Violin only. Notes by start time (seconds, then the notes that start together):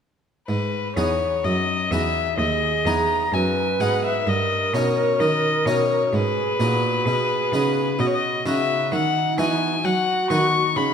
0.48 B4
0.96 C#5
1.44 D#5
1.91 E5
2.39 D#5
2.86 A#5
3.34 G#5
3.81 F#5
4.04 E5
4.28 D#5
4.74 C#5
5.20 D#5
5.66 C#5
6.14 B4
8.00 D#5
8.07 C#5
8.14 D#5
8.48 E5
8.93 F#5
9.40 G#5
9.85 F#5
10.30 C#6
10.77 B5